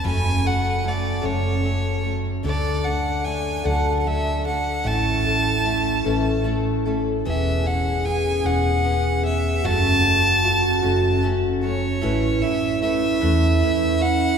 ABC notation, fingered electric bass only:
X:1
M:6/8
L:1/8
Q:3/8=50
K:A
V:1 name="Fingered electric bass" clef=bass
F,,,3 F,,,3 | D,,3 D,,3 | A,,,3 A,,,3 | E,,,3 E,,,3 |
F,,,3 F,,,3 | A,,, z2 E,, z2 |]